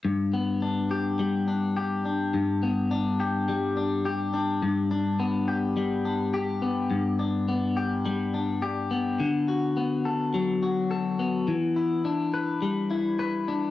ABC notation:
X:1
M:4/4
L:1/8
Q:1/4=105
K:Glyd
V:1 name="Clean electric guitar"
G,, B, D G G, D G D | G,, B, D G G, D G D | G,, D B, G G, D G B, | G,, D B, G G, D G B, |
D, F B, A F, F A B, | E, E D B G, E B D |]